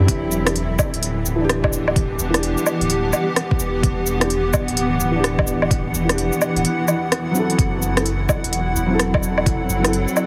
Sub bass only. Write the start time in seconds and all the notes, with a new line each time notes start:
0.08 E1
0.93 D1
1.26 D1
2.19 E1
2.81 D1
3.59 E1
3.84 E1
4.68 D1
5.00 D1
5.94 E1
6.56 D1
7.58 F#1
8.44 E1
8.76 E1
9.69 F#1